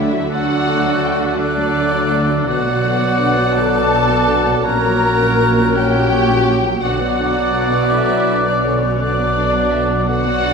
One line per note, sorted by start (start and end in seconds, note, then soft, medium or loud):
0.00 2.44 D2 medium
0.00 0.25 D3 medium
0.00 2.44 D3 medium
0.00 0.25 F#3 medium
0.00 0.12 A3 medium
0.00 0.14 A3 medium
0.00 0.12 D4 medium
0.00 0.14 D4 medium
0.00 0.29 E4 medium
0.00 0.30 E5 loud
0.12 0.30 F#3 medium
0.12 0.30 F#4 medium
0.29 1.20 D3 medium
0.29 1.20 F#3 medium
0.29 0.47 A3 medium
0.29 1.37 A3 medium
0.29 0.47 D4 medium
0.29 1.37 D4 medium
0.29 1.36 F#4 loud
0.29 1.34 A4 medium
0.29 1.35 D5 medium
0.29 1.04 F#5 loud
0.29 1.35 F#6 medium
0.48 0.66 F#3 medium
0.48 0.66 F#4 medium
0.66 0.84 A3 medium
0.66 0.84 D4 medium
0.85 1.03 F#3 medium
0.85 1.02 F#4 medium
1.02 1.19 A3 medium
1.02 1.19 D4 medium
1.02 1.12 G5 medium
1.14 1.22 F#5 medium
1.21 1.39 F#3 medium
1.21 1.39 F#4 medium
1.21 1.31 E5 medium
1.31 1.39 F#5 medium
1.37 2.45 D3 medium
1.37 2.45 F#3 medium
1.37 1.57 A3 medium
1.37 2.46 A3 medium
1.37 2.48 D4 loud
1.37 2.46 D4 medium
1.37 1.57 D4 medium
1.37 2.49 A4 medium
1.37 2.46 D5 medium
1.37 2.48 D5 loud
1.37 2.46 F#6 medium
1.57 1.75 F#3 medium
1.57 1.75 F#4 medium
1.75 1.92 A3 medium
1.75 1.92 D4 medium
1.92 2.11 F#3 medium
1.92 2.11 F#4 medium
2.10 2.29 A3 medium
2.10 2.29 D4 medium
2.28 2.47 F#3 medium
2.28 2.47 F#4 medium
2.46 4.61 B1 medium
2.46 4.64 B2 medium
2.46 4.61 B2 medium
2.46 2.64 D3 medium
2.46 4.60 F#3 medium
2.46 4.60 B3 medium
2.46 2.64 D4 medium
2.46 4.63 F#4 medium
2.46 3.53 F#4 loud
2.46 4.64 D5 medium
2.46 4.66 D5 medium
2.46 3.54 F#5 loud
2.46 4.61 F#6 medium
2.64 2.83 F#3 medium
2.64 2.84 B3 medium
2.84 3.02 D3 medium
2.84 3.02 D4 medium
3.02 3.20 F#3 medium
3.02 3.20 B3 medium
3.19 3.36 D3 medium
3.19 3.36 D4 medium
3.38 3.56 F#3 medium
3.38 3.55 B3 medium
3.55 3.74 D3 medium
3.55 3.74 D4 medium
3.55 4.65 A4 loud
3.55 4.64 A5 loud
3.74 3.91 F#3 medium
3.74 3.91 B3 medium
3.90 4.07 D3 medium
3.90 4.07 D4 medium
4.08 4.27 F#3 medium
4.08 4.27 B3 medium
4.26 4.45 D3 medium
4.26 4.46 D4 medium
4.45 4.64 F#3 medium
4.45 4.64 B3 medium
4.64 6.83 A#1 medium
4.64 6.83 A#2 medium
4.64 6.78 F#3 medium
4.64 4.82 A#3 medium
4.64 4.82 C#4 medium
4.64 6.67 C#4 medium
4.64 6.67 F#4 medium
4.64 6.11 A#4 medium
4.64 5.76 A#4 loud
4.64 6.52 C#5 medium
4.64 5.75 A#5 loud
4.64 6.52 F#6 medium
4.83 5.02 F#3 medium
4.83 5.01 A#3 medium
5.01 5.19 A#3 medium
5.01 5.20 C#4 medium
5.21 5.39 F#3 medium
5.21 5.39 A#3 medium
5.40 5.56 A#3 medium
5.40 5.56 C#4 medium
5.59 5.76 F#3 medium
5.59 5.76 A#3 medium
5.75 5.94 A#3 medium
5.75 5.94 C#4 medium
5.75 6.83 G4 loud
5.75 6.81 G5 loud
5.95 6.12 F#3 medium
5.95 6.10 A#3 medium
6.11 6.28 A#3 medium
6.11 6.28 C#4 medium
6.11 6.57 C#5 medium
6.30 6.48 F#3 medium
6.30 6.46 A#3 medium
6.47 6.64 A#3 medium
6.47 6.65 C#4 medium
6.65 6.83 F#3 medium
6.65 6.83 A#3 medium
6.82 10.53 B1 medium
6.82 10.53 B2 medium
6.82 8.83 B2 medium
6.82 7.00 D3 medium
6.82 8.83 F#3 medium
6.82 8.98 B3 medium
6.82 7.00 D4 medium
6.82 7.90 F#4 medium
6.82 8.97 F#4 medium
6.82 8.97 D5 medium
6.82 7.91 F#5 loud
6.82 8.96 F#6 medium
7.00 7.19 F#3 medium
7.00 7.19 B3 medium
7.19 7.37 D3 medium
7.19 7.37 D4 medium
7.37 7.55 F#3 medium
7.37 7.55 B3 medium
7.55 7.72 D3 medium
7.55 7.72 D4 medium
7.73 7.92 F#3 medium
7.73 7.92 B3 medium
7.91 8.10 D3 medium
7.91 8.10 D4 medium
7.91 8.46 E4 medium
7.91 8.46 E5 loud
8.09 8.28 F#3 medium
8.09 8.28 B3 medium
8.28 8.45 D3 medium
8.28 8.45 D4 medium
8.46 8.64 F#3 medium
8.46 8.64 B3 medium
8.46 8.64 D4 medium
8.46 8.64 D5 medium
8.63 8.82 D3 medium
8.63 9.02 C#4 medium
8.63 8.82 D4 medium
8.63 9.00 C#5 medium
8.82 9.01 F#3 medium
8.82 9.01 B3 medium
9.00 10.05 B2 medium
9.00 9.17 D3 medium
9.00 10.06 F#3 medium
9.00 10.06 B3 medium
9.00 9.17 D4 medium
9.00 10.09 D4 medium
9.00 10.05 F#4 medium
9.00 9.73 D5 loud
9.00 10.06 D5 medium
9.00 10.05 F#6 medium
9.18 9.37 F#3 medium
9.18 9.37 B3 medium
9.36 9.54 D3 medium
9.36 9.54 D4 medium
9.54 9.72 F#3 medium
9.54 9.72 B3 medium
9.72 9.89 D3 medium
9.72 9.89 D4 medium
9.72 9.81 E5 medium
9.81 9.90 D5 medium
9.89 10.08 F#3 medium
9.89 10.08 B3 medium
9.89 9.99 C#5 medium
9.99 10.08 D5 medium
10.06 10.53 B2 medium
10.06 10.26 D3 medium
10.06 10.53 F#3 medium
10.06 10.53 B3 medium
10.06 10.26 D4 medium
10.06 10.53 F#4 medium
10.06 10.53 F#4 loud
10.06 10.53 D5 medium
10.06 10.53 F#5 loud
10.06 10.53 F#6 medium
10.26 10.44 F#3 medium
10.26 10.44 B3 medium
10.45 10.53 D3 medium
10.45 10.53 D4 medium